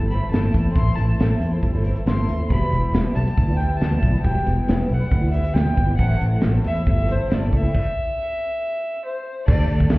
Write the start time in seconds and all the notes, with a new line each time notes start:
Already playing: G1
0.00 A3 C4 E4
0.10 E3 A3 C4 E4 B5, closed hi-hat
0.22 A3 C4 E4
0.30 G1 A2 E3 A3 C4 A5, snare, closed hi-hat
0.34 E4
0.54 E2 E3 A3 C4 E4, kick, closed hi-hat
0.64 A3 C4 E4
0.74 A1 A2 E3 A3 C4 E4 C6, kick, closed hi-hat
0.95 A1 E3 A3 C4 A5, closed hi-hat
0.99 E4
1.20 A1 A2 E3 A3 C4 E4, snare, closed hi-hat
1.40 E2 E3 A3 C4 E4, closed hi-hat
1.51 A3 C4 E4
1.63 G1, kick, closed hi-hat
1.73 A3 C4 E4
1.84 E3 A3 C4 E4, closed hi-hat
1.95 A3 C4 E4, closed hi-hat
2.06 G1 A2 E3 A3 C4 E4 C6, snare, closed hi-hat
2.28 D#2 E3 A3 C4 E4, closed hi-hat
2.40 A3 C4 E4
2.50 E1 E2 B2 E3 G3 B3 E4 B5, kick, closed hi-hat
2.71 E1 E3 G3 B3 E4, closed hi-hat
2.93 E1 E2 B2 E3 G3 B3 E4, snare, closed hi-hat
3.14 B1 E3 G3 B3 E4 A5, closed hi-hat
3.26 E3 G3 B3 E4, closed hi-hat
3.38 D2, kick, closed hi-hat
3.47 E3 G3 B3 E4
3.56 E3 G3 B3 E4 G5, closed hi-hat
3.69 E3 G3 B3 E4
3.77 E2 B2 E3 G3 A5
3.81 D2 B3 E4, snare, closed hi-hat
4.01 B1 E3 G3 B3 E4, kick, closed hi-hat
4.11 E3 G3 B3 E4
4.23 E1 E2 B2 E3 G3 B3 E4 G5, kick, closed hi-hat
4.45 E1 E3 G3 B3 E4, closed hi-hat
4.67 E1 E2 B2 E3 G3 B3 E4, snare, closed hi-hat
4.87 B1 E3 G3 B3 E4, closed hi-hat
4.93 F#5
4.99 E3 G3 B3 E4
5.11 D2, kick, closed hi-hat
5.20 E3 G3 B3 E4
5.31 E3 G3 B3 E4 E5, closed hi-hat
5.43 E3 G3 B3 E4, closed hi-hat
5.54 D2 E2 B2 E3 G3 B3 E4 G5, snare, closed hi-hat
5.75 G1 E3 G3 B3 E4, kick, closed hi-hat
5.86 E3 G3 B3 E4
5.97 A1 A2 E3 A3 C4 E4 F#5, kick, closed hi-hat
6.19 A1 E3 A3 C4 E4, closed hi-hat
6.41 A1 A2 E3 A3 C4 E4, snare, closed hi-hat
6.63 E2 E3 A3 C4 E4 E5, closed hi-hat
6.73 A3 C4 E4, closed hi-hat
6.86 G1 E5, kick, closed hi-hat
6.97 A3 C4 E4
7.06 E3 A3 C4 E4, closed hi-hat
7.12 C5
7.18 A3 C4 E4
7.28 G1 A2 E3 A3 C4 E4, snare, closed hi-hat
7.34 D5
7.49 C#2 E3 A3 C4 E4, kick, closed hi-hat
7.56 E5
7.62 A3 C4 E4
7.75 kick, crash
9.05 C5
9.46 D2 D3 A3 D4 G4 D5, kick, crash
9.68 D2 D3 A3 D4 G4, closed hi-hat
9.80 kick
9.89 D2 D3 A3 D4 G4, snare, closed hi-hat